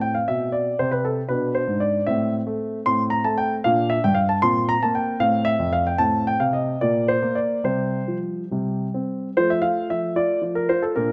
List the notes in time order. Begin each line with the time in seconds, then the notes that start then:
Already playing: A2 C4
0.01 G5
0.15 F5
0.28 B2 E5
0.52 D5
0.79 C3 C5
0.91 B4
1.05 A4
1.29 B2 D4 B4
1.55 C5
1.68 G#2
1.80 D5
2.07 A2 C4 E5
2.47 A3
2.86 A2 C4 C6
3.10 A#5
3.24 A3 A5
3.38 G5
3.64 A#2 D4 F5
3.90 E5
4.04 G2 G5
4.15 F5
4.29 A5
4.42 A#2 C4 C6
4.69 A#5
4.83 A#3 A5
4.95 G5
5.20 A2 C4 F5
5.45 E5
5.59 F2
5.73 F5
5.87 G5
5.98 A2 C4 A5
6.27 G5
6.40 C3 F5
6.53 D#5
6.81 A#2 A#3 D5
7.08 C5
7.22 A#3
7.35 D5
7.64 C3 G3 C5
8.08 F3
8.51 C3 G3
8.94 C4
9.37 F3 A3 F4 C5
9.50 E5
9.62 F4 F5
9.90 F3 E5
10.16 F4 D5
10.42 F3
10.55 A#4
10.69 F4 C5
10.82 A4
10.96 A#2 D4 F4 A#4